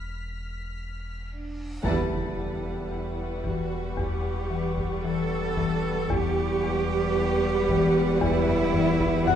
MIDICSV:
0, 0, Header, 1, 13, 480
1, 0, Start_track
1, 0, Key_signature, 1, "minor"
1, 0, Tempo, 1090909
1, 810, Time_signature, 4, 2, 24, 8
1, 1283, Tempo, 1058201
1, 4203, End_track
2, 0, Start_track
2, 0, Title_t, "Violin section"
2, 0, Program_c, 0, 48
2, 0, Note_on_c, 0, 89, 42
2, 0, Note_on_c, 0, 95, 43
2, 552, Note_off_c, 0, 95, 0
2, 553, Note_off_c, 0, 89, 0
2, 807, Note_on_c, 0, 78, 37
2, 1283, Note_on_c, 0, 85, 40
2, 4203, Note_off_c, 0, 78, 0
2, 4203, Note_off_c, 0, 85, 0
2, 4203, End_track
3, 0, Start_track
3, 0, Title_t, "Harp"
3, 0, Program_c, 1, 46
3, 0, Note_on_c, 1, 86, 21
3, 813, Note_on_c, 1, 69, 30
3, 815, Note_on_c, 1, 81, 41
3, 832, Note_off_c, 1, 86, 0
3, 2567, Note_off_c, 1, 69, 0
3, 2569, Note_off_c, 1, 81, 0
3, 4166, Note_on_c, 1, 78, 62
3, 4203, Note_off_c, 1, 78, 0
3, 4203, End_track
4, 0, Start_track
4, 0, Title_t, "Violin section"
4, 0, Program_c, 2, 48
4, 804, Note_on_c, 2, 78, 61
4, 2709, Note_off_c, 2, 78, 0
4, 2733, Note_on_c, 2, 78, 73
4, 4203, Note_off_c, 2, 78, 0
4, 4203, End_track
5, 0, Start_track
5, 0, Title_t, "Violin section"
5, 0, Program_c, 3, 48
5, 811, Note_on_c, 3, 71, 60
5, 2712, Note_off_c, 3, 71, 0
5, 2731, Note_on_c, 3, 71, 73
5, 4203, Note_off_c, 3, 71, 0
5, 4203, End_track
6, 0, Start_track
6, 0, Title_t, "Cello section"
6, 0, Program_c, 4, 48
6, 568, Note_on_c, 4, 62, 37
6, 793, Note_off_c, 4, 62, 0
6, 809, Note_on_c, 4, 64, 70
6, 1505, Note_off_c, 4, 64, 0
6, 1519, Note_on_c, 4, 66, 66
6, 1763, Note_off_c, 4, 66, 0
6, 1763, Note_on_c, 4, 67, 72
6, 2244, Note_on_c, 4, 69, 97
6, 2246, Note_off_c, 4, 67, 0
6, 2719, Note_off_c, 4, 69, 0
6, 2731, Note_on_c, 4, 67, 107
6, 3685, Note_on_c, 4, 64, 114
6, 3687, Note_off_c, 4, 67, 0
6, 4162, Note_on_c, 4, 66, 101
6, 4163, Note_off_c, 4, 64, 0
6, 4203, Note_off_c, 4, 66, 0
6, 4203, End_track
7, 0, Start_track
7, 0, Title_t, "Viola section"
7, 0, Program_c, 5, 48
7, 804, Note_on_c, 5, 55, 56
7, 2709, Note_off_c, 5, 55, 0
7, 2724, Note_on_c, 5, 55, 76
7, 4203, Note_off_c, 5, 55, 0
7, 4203, End_track
8, 0, Start_track
8, 0, Title_t, "Double bass section"
8, 0, Program_c, 6, 48
8, 808, Note_on_c, 6, 40, 68
8, 2711, Note_off_c, 6, 40, 0
8, 2729, Note_on_c, 6, 40, 76
8, 4203, Note_off_c, 6, 40, 0
8, 4203, End_track
9, 0, Start_track
9, 0, Title_t, "Marimba"
9, 0, Program_c, 7, 12
9, 806, Note_on_c, 7, 40, 58
9, 949, Note_off_c, 7, 40, 0
9, 1045, Note_on_c, 7, 40, 39
9, 1187, Note_off_c, 7, 40, 0
9, 1281, Note_on_c, 7, 40, 43
9, 1426, Note_off_c, 7, 40, 0
9, 1520, Note_on_c, 7, 52, 46
9, 1666, Note_off_c, 7, 52, 0
9, 1763, Note_on_c, 7, 40, 66
9, 1908, Note_off_c, 7, 40, 0
9, 2004, Note_on_c, 7, 52, 48
9, 2149, Note_off_c, 7, 52, 0
9, 2248, Note_on_c, 7, 52, 57
9, 2392, Note_off_c, 7, 52, 0
9, 2490, Note_on_c, 7, 52, 58
9, 2635, Note_off_c, 7, 52, 0
9, 2727, Note_on_c, 7, 40, 91
9, 2873, Note_off_c, 7, 40, 0
9, 2971, Note_on_c, 7, 40, 64
9, 3115, Note_off_c, 7, 40, 0
9, 3209, Note_on_c, 7, 40, 59
9, 3352, Note_off_c, 7, 40, 0
9, 3451, Note_on_c, 7, 52, 64
9, 3593, Note_off_c, 7, 52, 0
9, 3689, Note_on_c, 7, 40, 95
9, 3831, Note_off_c, 7, 40, 0
9, 3923, Note_on_c, 7, 52, 65
9, 4067, Note_off_c, 7, 52, 0
9, 4165, Note_on_c, 7, 52, 66
9, 4203, Note_off_c, 7, 52, 0
9, 4203, End_track
10, 0, Start_track
10, 0, Title_t, "Sub bass"
10, 0, Program_c, 8, 38
10, 0, Note_on_c, 8, 28, 55
10, 791, Note_off_c, 8, 28, 0
10, 813, Note_on_c, 8, 28, 64
10, 2713, Note_off_c, 8, 28, 0
10, 2730, Note_on_c, 8, 28, 77
10, 4203, Note_off_c, 8, 28, 0
10, 4203, End_track
11, 0, Start_track
11, 0, Title_t, "Impact"
11, 0, Program_c, 10, 103
11, 808, Note_on_c, 10, 60, 59
11, 2729, Note_off_c, 10, 60, 0
11, 4203, End_track
12, 0, Start_track
12, 0, Title_t, "Reverse cymbal"
12, 0, Program_c, 11, 119
12, 0, Note_on_c, 11, 60, 37
12, 809, Note_off_c, 11, 60, 0
12, 4203, End_track
13, 0, Start_track
13, 0, Title_t, "Taiko and cinematic ensemble drums"
13, 809, Note_on_c, 9, 41, 74
13, 853, Note_off_c, 9, 41, 0
13, 1522, Note_on_c, 9, 41, 74
13, 1568, Note_off_c, 9, 41, 0
13, 1762, Note_on_c, 9, 41, 70
13, 1808, Note_off_c, 9, 41, 0
13, 2125, Note_on_c, 9, 41, 72
13, 2171, Note_off_c, 9, 41, 0
13, 2487, Note_on_c, 9, 41, 72
13, 2532, Note_off_c, 9, 41, 0
13, 2728, Note_on_c, 9, 41, 90
13, 2773, Note_off_c, 9, 41, 0
13, 3448, Note_on_c, 9, 41, 87
13, 3494, Note_off_c, 9, 41, 0
13, 3686, Note_on_c, 9, 41, 77
13, 3732, Note_off_c, 9, 41, 0
13, 3803, Note_on_c, 9, 45, 50
13, 3849, Note_off_c, 9, 45, 0
13, 3924, Note_on_c, 9, 45, 57
13, 3970, Note_off_c, 9, 45, 0
13, 4045, Note_on_c, 9, 41, 82
13, 4090, Note_off_c, 9, 41, 0
13, 4163, Note_on_c, 9, 45, 60
13, 4203, Note_off_c, 9, 45, 0
13, 4203, End_track
0, 0, End_of_file